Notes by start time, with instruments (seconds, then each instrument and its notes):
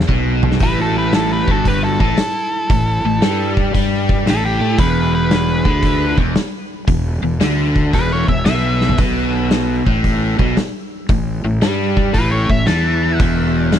0.00 snare
0.08 fingered electric bass B1, overdriven electric guitar B2, kick
0.43 floor tom
0.51 snare
0.59 fingered electric bass A1, overdriven electric guitar A2, kick, open hi-hat
0.63 lead electric guitar G4 B4
0.80 lead electric guitar F#4 A4
0.98 lead electric guitar G4 B4
1.13 lead electric guitar E4 A4, snare, open hi-hat
1.33 lead electric guitar G4 B4
1.47 fingered electric bass G1, overdriven electric guitar G2, lead electric guitar F#4 A4, kick
1.65 lead electric guitar G4 B4, kick, open hi-hat
1.84 lead electric guitar F#4 A4
2.00 fingered electric bass A1, overdriven electric guitar A2, lead electric guitar E4 A4, kick
2.17 snare, open hi-hat
2.70 fingered electric bass A1, overdriven electric guitar A2, kick, open hi-hat
3.05 fingered electric bass A1, overdriven electric guitar A2
3.22 fingered electric bass G2, overdriven electric guitar G3, snare, open hi-hat
3.57 kick
3.74 fingered electric bass G2, overdriven electric guitar G3, kick, open hi-hat
4.09 kick
4.26 fingered electric bass A1, overdriven electric guitar A2, lead electric guitar E4, snare, open hi-hat
4.30 lead electric guitar A4
4.45 lead electric guitar E4 G4
4.61 fingered electric bass A2, overdriven electric guitar A3
4.78 fingered electric bass E1, overdriven electric guitar E2, lead electric guitar G#4 B4, kick, open hi-hat
5.15 lead electric guitar G#4 B4
5.31 snare, open hi-hat
5.65 fingered electric bass D2, overdriven electric guitar D3, kick
5.83 kick, open hi-hat
6.17 fingered electric bass E1, overdriven electric guitar E2, kick
6.35 snare, open hi-hat
6.87 fingered electric bass E1, overdriven electric guitar E2, kick, open hi-hat
7.22 fingered electric bass E1, overdriven electric guitar E2
7.40 fingered electric bass D2, overdriven electric guitar D3, snare, open hi-hat
7.76 kick
7.93 fingered electric bass E1, overdriven electric guitar E2, lead electric guitar G#4 B4, kick, open hi-hat
8.13 lead electric guitar A4 C#5
8.28 fingered electric bass E1, overdriven electric guitar E2, lead electric guitar C#5 E5, kick
8.45 fingered electric bass B1, overdriven electric guitar B2, lead electric guitar B4 E5, snare, open hi-hat
8.81 snare
8.89 floor tom
8.98 fingered electric bass B1, overdriven electric guitar B2, kick, open hi-hat
9.51 snare, open hi-hat
9.86 fingered electric bass A1, overdriven electric guitar A2, kick
10.04 kick, open hi-hat
10.39 fingered electric bass B1, overdriven electric guitar B2, kick
10.57 snare, open hi-hat
11.09 fingered electric bass A1, overdriven electric guitar A2, kick, open hi-hat
11.44 fingered electric bass A1, overdriven electric guitar A2
11.62 fingered electric bass G2, overdriven electric guitar G3, snare, open hi-hat
11.97 kick
12.14 fingered electric bass A1, overdriven electric guitar A2, lead electric guitar G4 B4, kick, open hi-hat
12.32 lead electric guitar A4 C#5
12.49 fingered electric bass A1, overdriven electric guitar A2, lead electric guitar C#5 E5, kick
12.66 fingered electric bass E2, overdriven electric guitar E3, lead electric guitar E5 A5, snare, open hi-hat
13.19 fingered electric bass E1, overdriven electric guitar E2, kick, open hi-hat
13.72 snare, open hi-hat